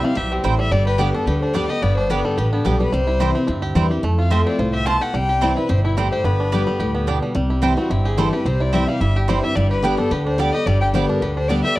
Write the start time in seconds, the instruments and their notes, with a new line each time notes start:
Already playing: steel-string acoustic guitar C3, five-string banjo C4 E4 G4
0.03 five-string banjo G3, steel-string acoustic guitar C4 E4, fiddle F5
0.15 upright bass B1, steel-string acoustic guitar B2, five-string banjo G4, fiddle E5
0.32 five-string banjo C4, fiddle G4
0.44 upright bass A1, steel-string acoustic guitar A2, mandolin C4 E4 C5 G5, five-string banjo E4, fiddle C5
0.59 five-string banjo G3, fiddle E5
0.71 upright bass G1, steel-string acoustic guitar G2, five-string banjo G3, fiddle D5
0.87 five-string banjo G4, fiddle B4
0.98 steel-string acoustic guitar D3 G3 B3 G4, mandolin B3 G4 D5 G5, five-string banjo B3, fiddle G4
1.14 steel-string acoustic guitar B3 G4, five-string banjo D4, fiddle A4
1.26 upright bass D2, steel-string acoustic guitar D3, five-string banjo G4, fiddle B4
1.41 five-string banjo D4, fiddle C5
1.54 steel-string acoustic guitar D3 G3 B3 G4, five-string banjo G3, mandolin B3 G4 D5 G5, fiddle D5
1.69 steel-string acoustic guitar B3 G4, five-string banjo G4, fiddle D#5
1.82 upright bass G1, steel-string acoustic guitar G2, five-string banjo B3, fiddle D5
1.97 five-string banjo D4, fiddle C5
2.10 steel-string acoustic guitar D3 G3 B3 G4, mandolin B3 G4 D5 G5, five-string banjo B3, fiddle B4
2.25 five-string banjo G3, fiddle A4
2.37 upright bass A1, steel-string acoustic guitar D3, five-string banjo G4, fiddle B4
2.53 five-string banjo B3, fiddle D4
2.65 upright bass B1, steel-string acoustic guitar D3 G3 B3 G4, mandolin B3 G4 D5 G5, five-string banjo D4, fiddle G4
2.80 five-string banjo G3, steel-string acoustic guitar B3 G4, fiddle B4
2.92 upright bass C2, steel-string acoustic guitar C3, five-string banjo G3, fiddle C5
3.07 five-string banjo E4
3.20 steel-string acoustic guitar E3 G3 C4 E4, mandolin C4 E4 C5 G5, five-string banjo G4
3.35 five-string banjo C4, steel-string acoustic guitar C4 E4
3.47 upright bass D2, steel-string acoustic guitar G2, five-string banjo E4
3.62 five-string banjo G4
3.75 upright bass E2, steel-string acoustic guitar E3 G3 C4 E4, five-string banjo G3, mandolin C4 E4 C5 G5
3.90 steel-string acoustic guitar C4 E4, five-string banjo G4
4.03 steel-string acoustic guitar F2, upright bass F2, five-string banjo A3
4.18 five-string banjo F4, fiddle F5
4.30 steel-string acoustic guitar F3 A3 C4 F4, mandolin C4 F4 C5 A5, five-string banjo G4, fiddle E5
4.46 five-string banjo C4, fiddle D5
4.59 upright bass C2, steel-string acoustic guitar A2, five-string banjo F4, fiddle C5
4.73 five-string banjo G4, fiddle E5
4.86 steel-string acoustic guitar B2, five-string banjo A3, mandolin C4 F4 C5 A5, fiddle A5
5.01 five-string banjo G4, fiddle F#5
5.14 upright bass C2, steel-string acoustic guitar C3, five-string banjo G3, fiddle G5
5.29 five-string banjo G4
5.41 steel-string acoustic guitar E3 G3 C4 E4, mandolin C4 E4 C5 G5, five-string banjo C4, fiddle D5
5.56 steel-string acoustic guitar C4 E4, five-string banjo E4, fiddle B4
5.69 upright bass G1, steel-string acoustic guitar B2, five-string banjo G4, fiddle C5
5.84 fiddle E4, five-string banjo E4
5.97 steel-string acoustic guitar A2, five-string banjo G3, mandolin C4 E4 C5 G5, fiddle G4
6.12 five-string banjo G4, fiddle C5
6.24 upright bass G1, steel-string acoustic guitar G2, five-string banjo B3, fiddle B4
6.40 five-string banjo D4
6.52 steel-string acoustic guitar D3 G3 B3 G4, mandolin B3 G4 D5 G5, five-string banjo B3
6.67 five-string banjo G3, steel-string acoustic guitar B3 G4
6.80 upright bass D2, steel-string acoustic guitar A2, five-string banjo G4
6.95 five-string banjo B3
7.07 steel-string acoustic guitar B2, mandolin B3 G4 D5 G5, five-string banjo D4
7.22 five-string banjo G3
7.35 upright bass C2, steel-string acoustic guitar C3, five-string banjo G3
7.50 five-string banjo E4
7.62 steel-string acoustic guitar E3 G3 C4 E4, mandolin C4 E4 C5 G5, five-string banjo G4
7.77 five-string banjo C4, steel-string acoustic guitar C4 E4, fiddle F#4
7.90 upright bass G1, steel-string acoustic guitar G2, five-string banjo E4, fiddle G4
8.05 five-string banjo G4, fiddle G#4
8.17 steel-string acoustic guitar E3 G3 C4 E4, five-string banjo G3, mandolin C4 E4 C5 G5, fiddle A4
8.32 steel-string acoustic guitar C4 E4, five-string banjo G4, fiddle B4
8.45 upright bass C2, steel-string acoustic guitar C3, five-string banjo C4, fiddle C5
8.60 five-string banjo E4, fiddle D5
8.73 steel-string acoustic guitar E3 G3 C4 E4, mandolin C4 E4 C5 G5, five-string banjo G4, fiddle E5
8.88 five-string banjo G3, steel-string acoustic guitar C4 E4, fiddle F5
9.01 upright bass G1, steel-string acoustic guitar G2, five-string banjo E4, fiddle E5
9.16 fiddle G4, five-string banjo G4
9.28 steel-string acoustic guitar E3 G3 C4 E4, five-string banjo G3, mandolin C4 E4 C5 G5, fiddle C5
9.43 steel-string acoustic guitar C4 E4, five-string banjo E4, fiddle E5
9.55 upright bass G1, steel-string acoustic guitar G2, five-string banjo G3, fiddle D5
9.71 five-string banjo G4, fiddle B4
9.82 steel-string acoustic guitar D3 G3 B3 G4, five-string banjo B3, mandolin B3 G4 D5 G5, fiddle G4
9.97 steel-string acoustic guitar B3 G4, five-string banjo D4, fiddle A4
10.11 upright bass D2, steel-string acoustic guitar D3, five-string banjo G4, fiddle B4
10.26 five-string banjo D4, fiddle C5
10.38 steel-string acoustic guitar D3 G3 B3 G4, five-string banjo G3, mandolin B3 G4 D5 G5, fiddle D5
10.53 steel-string acoustic guitar B3 G4, five-string banjo G4, fiddle D#5
10.66 upright bass G1, steel-string acoustic guitar G2, five-string banjo G3, fiddle D5
10.81 five-string banjo G4, fiddle G5
10.94 steel-string acoustic guitar D3 G3 B3 G4, mandolin B3 G4 D5 G5, five-string banjo B3, fiddle C5
11.09 five-string banjo D4, fiddle A#4
11.22 upright bass D2, steel-string acoustic guitar D3, five-string banjo G4, fiddle B4
11.36 five-string banjo D4, fiddle C5
11.48 steel-string acoustic guitar D3 G3 B3 G4, five-string banjo G3, mandolin B3 G4 D5 G5, fiddle D5
11.63 steel-string acoustic guitar B3 G4, five-string banjo G4, fiddle E5
11.76 fiddle D5